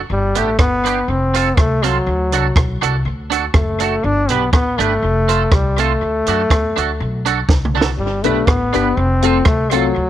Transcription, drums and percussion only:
0, 0, Header, 1, 2, 480
1, 0, Start_track
1, 0, Key_signature, 1, "major"
1, 0, Tempo, 493016
1, 92, Time_signature, 4, 2, 24, 8
1, 9831, End_track
2, 0, Start_track
2, 0, Title_t, "Drums"
2, 343, Note_on_c, 9, 42, 88
2, 440, Note_off_c, 9, 42, 0
2, 572, Note_on_c, 9, 36, 101
2, 574, Note_on_c, 9, 37, 109
2, 669, Note_off_c, 9, 36, 0
2, 672, Note_off_c, 9, 37, 0
2, 832, Note_on_c, 9, 42, 79
2, 930, Note_off_c, 9, 42, 0
2, 1308, Note_on_c, 9, 42, 89
2, 1406, Note_off_c, 9, 42, 0
2, 1532, Note_on_c, 9, 36, 111
2, 1534, Note_on_c, 9, 37, 104
2, 1630, Note_off_c, 9, 36, 0
2, 1632, Note_off_c, 9, 37, 0
2, 1788, Note_on_c, 9, 42, 90
2, 1885, Note_off_c, 9, 42, 0
2, 2261, Note_on_c, 9, 42, 92
2, 2358, Note_off_c, 9, 42, 0
2, 2491, Note_on_c, 9, 36, 114
2, 2499, Note_on_c, 9, 37, 114
2, 2588, Note_off_c, 9, 36, 0
2, 2596, Note_off_c, 9, 37, 0
2, 2754, Note_on_c, 9, 42, 82
2, 2851, Note_off_c, 9, 42, 0
2, 3228, Note_on_c, 9, 42, 91
2, 3326, Note_off_c, 9, 42, 0
2, 3446, Note_on_c, 9, 37, 102
2, 3448, Note_on_c, 9, 36, 117
2, 3544, Note_off_c, 9, 37, 0
2, 3545, Note_off_c, 9, 36, 0
2, 3697, Note_on_c, 9, 42, 82
2, 3795, Note_off_c, 9, 42, 0
2, 4173, Note_on_c, 9, 42, 84
2, 4270, Note_off_c, 9, 42, 0
2, 4409, Note_on_c, 9, 36, 106
2, 4414, Note_on_c, 9, 37, 121
2, 4507, Note_off_c, 9, 36, 0
2, 4511, Note_off_c, 9, 37, 0
2, 4672, Note_on_c, 9, 42, 76
2, 4769, Note_off_c, 9, 42, 0
2, 5149, Note_on_c, 9, 42, 87
2, 5246, Note_off_c, 9, 42, 0
2, 5370, Note_on_c, 9, 36, 113
2, 5372, Note_on_c, 9, 37, 108
2, 5468, Note_off_c, 9, 36, 0
2, 5469, Note_off_c, 9, 37, 0
2, 5627, Note_on_c, 9, 42, 84
2, 5724, Note_off_c, 9, 42, 0
2, 6100, Note_on_c, 9, 42, 81
2, 6197, Note_off_c, 9, 42, 0
2, 6332, Note_on_c, 9, 36, 95
2, 6339, Note_on_c, 9, 37, 117
2, 6430, Note_off_c, 9, 36, 0
2, 6437, Note_off_c, 9, 37, 0
2, 6595, Note_on_c, 9, 42, 73
2, 6692, Note_off_c, 9, 42, 0
2, 7067, Note_on_c, 9, 42, 92
2, 7164, Note_off_c, 9, 42, 0
2, 7290, Note_on_c, 9, 36, 117
2, 7295, Note_on_c, 9, 38, 58
2, 7387, Note_off_c, 9, 36, 0
2, 7392, Note_off_c, 9, 38, 0
2, 7448, Note_on_c, 9, 45, 66
2, 7545, Note_off_c, 9, 45, 0
2, 7607, Note_on_c, 9, 38, 97
2, 7704, Note_off_c, 9, 38, 0
2, 8020, Note_on_c, 9, 42, 79
2, 8118, Note_off_c, 9, 42, 0
2, 8249, Note_on_c, 9, 36, 104
2, 8255, Note_on_c, 9, 37, 108
2, 8347, Note_off_c, 9, 36, 0
2, 8353, Note_off_c, 9, 37, 0
2, 8506, Note_on_c, 9, 42, 75
2, 8603, Note_off_c, 9, 42, 0
2, 8981, Note_on_c, 9, 42, 83
2, 9078, Note_off_c, 9, 42, 0
2, 9202, Note_on_c, 9, 37, 99
2, 9206, Note_on_c, 9, 36, 117
2, 9299, Note_off_c, 9, 37, 0
2, 9304, Note_off_c, 9, 36, 0
2, 9455, Note_on_c, 9, 42, 86
2, 9553, Note_off_c, 9, 42, 0
2, 9831, End_track
0, 0, End_of_file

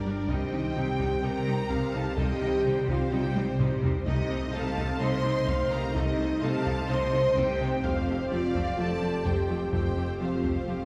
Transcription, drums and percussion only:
0, 0, Header, 1, 2, 480
1, 0, Start_track
1, 0, Tempo, 472441
1, 289, Time_signature, 4, 2, 24, 8
1, 11024, End_track
2, 0, Start_track
2, 0, Title_t, "Taiko and cinematic ensemble drums"
2, 290, Note_on_c, 9, 41, 79
2, 392, Note_off_c, 9, 41, 0
2, 1009, Note_on_c, 9, 41, 69
2, 1111, Note_off_c, 9, 41, 0
2, 1727, Note_on_c, 9, 41, 65
2, 1828, Note_off_c, 9, 41, 0
2, 2210, Note_on_c, 9, 41, 83
2, 2311, Note_off_c, 9, 41, 0
2, 2929, Note_on_c, 9, 41, 74
2, 3030, Note_off_c, 9, 41, 0
2, 3410, Note_on_c, 9, 48, 69
2, 3512, Note_off_c, 9, 48, 0
2, 3651, Note_on_c, 9, 45, 77
2, 3753, Note_off_c, 9, 45, 0
2, 3892, Note_on_c, 9, 43, 81
2, 3993, Note_off_c, 9, 43, 0
2, 4130, Note_on_c, 9, 41, 87
2, 4232, Note_off_c, 9, 41, 0
2, 4851, Note_on_c, 9, 41, 75
2, 4953, Note_off_c, 9, 41, 0
2, 5569, Note_on_c, 9, 41, 70
2, 5671, Note_off_c, 9, 41, 0
2, 6053, Note_on_c, 9, 41, 83
2, 6155, Note_off_c, 9, 41, 0
2, 6769, Note_on_c, 9, 41, 74
2, 6870, Note_off_c, 9, 41, 0
2, 7485, Note_on_c, 9, 41, 68
2, 7587, Note_off_c, 9, 41, 0
2, 7966, Note_on_c, 9, 41, 86
2, 8067, Note_off_c, 9, 41, 0
2, 8686, Note_on_c, 9, 41, 74
2, 8788, Note_off_c, 9, 41, 0
2, 9408, Note_on_c, 9, 41, 70
2, 9509, Note_off_c, 9, 41, 0
2, 9885, Note_on_c, 9, 41, 81
2, 9987, Note_off_c, 9, 41, 0
2, 10606, Note_on_c, 9, 41, 69
2, 10708, Note_off_c, 9, 41, 0
2, 11024, End_track
0, 0, End_of_file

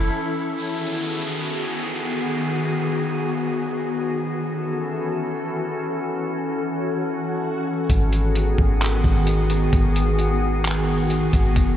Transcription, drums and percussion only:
0, 0, Header, 1, 2, 480
1, 0, Start_track
1, 0, Tempo, 458015
1, 595, Time_signature, 4, 2, 24, 8
1, 12332, End_track
2, 0, Start_track
2, 0, Title_t, "Drums"
2, 8275, Note_on_c, 9, 36, 117
2, 8275, Note_on_c, 9, 42, 82
2, 8380, Note_off_c, 9, 36, 0
2, 8380, Note_off_c, 9, 42, 0
2, 8516, Note_on_c, 9, 42, 72
2, 8621, Note_off_c, 9, 42, 0
2, 8755, Note_on_c, 9, 42, 82
2, 8860, Note_off_c, 9, 42, 0
2, 8996, Note_on_c, 9, 36, 91
2, 9101, Note_off_c, 9, 36, 0
2, 9233, Note_on_c, 9, 42, 74
2, 9241, Note_on_c, 9, 39, 113
2, 9338, Note_off_c, 9, 42, 0
2, 9345, Note_off_c, 9, 39, 0
2, 9475, Note_on_c, 9, 36, 102
2, 9579, Note_off_c, 9, 36, 0
2, 9713, Note_on_c, 9, 42, 87
2, 9818, Note_off_c, 9, 42, 0
2, 9954, Note_on_c, 9, 42, 62
2, 10059, Note_off_c, 9, 42, 0
2, 10195, Note_on_c, 9, 42, 80
2, 10196, Note_on_c, 9, 36, 125
2, 10299, Note_off_c, 9, 42, 0
2, 10301, Note_off_c, 9, 36, 0
2, 10437, Note_on_c, 9, 42, 70
2, 10541, Note_off_c, 9, 42, 0
2, 10675, Note_on_c, 9, 42, 85
2, 10780, Note_off_c, 9, 42, 0
2, 11153, Note_on_c, 9, 42, 75
2, 11161, Note_on_c, 9, 39, 118
2, 11258, Note_off_c, 9, 42, 0
2, 11266, Note_off_c, 9, 39, 0
2, 11634, Note_on_c, 9, 42, 88
2, 11739, Note_off_c, 9, 42, 0
2, 11875, Note_on_c, 9, 42, 60
2, 11877, Note_on_c, 9, 36, 91
2, 11979, Note_off_c, 9, 42, 0
2, 11981, Note_off_c, 9, 36, 0
2, 12116, Note_on_c, 9, 36, 121
2, 12116, Note_on_c, 9, 42, 85
2, 12220, Note_off_c, 9, 42, 0
2, 12221, Note_off_c, 9, 36, 0
2, 12332, End_track
0, 0, End_of_file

